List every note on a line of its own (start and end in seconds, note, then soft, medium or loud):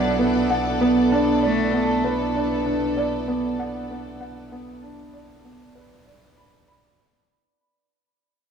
0.00 6.97 B1 medium
0.00 0.50 F#3 medium
0.00 0.19 B3 medium
0.00 6.99 B3 medium
0.00 1.12 D4 medium
0.00 7.00 E4 medium
0.00 7.00 A4 medium
0.00 2.04 B4 medium
0.00 1.43 D5 medium
0.00 7.00 D5 medium
0.00 0.18 F#5 medium
0.19 0.49 B3 medium
0.50 0.80 F#5 medium
0.81 1.10 B3 medium
1.12 1.41 D4 loud
1.43 2.01 A3 loud
1.43 1.72 D5 medium
1.74 2.03 B3 medium
2.04 2.34 B4 medium
2.35 2.65 D4 medium
2.66 2.96 D4 medium
2.97 3.27 D5 medium
3.28 3.58 B3 medium
3.59 3.89 F#5 medium
3.90 4.20 B3 medium
4.21 4.50 F#5 medium
4.52 4.81 B3 medium
4.83 5.12 D4 medium
5.13 5.43 D5 medium
5.44 5.74 B3 medium
5.75 6.05 B4 medium
6.07 6.36 D5 medium
6.37 6.67 B5 medium
6.68 6.86 B5 medium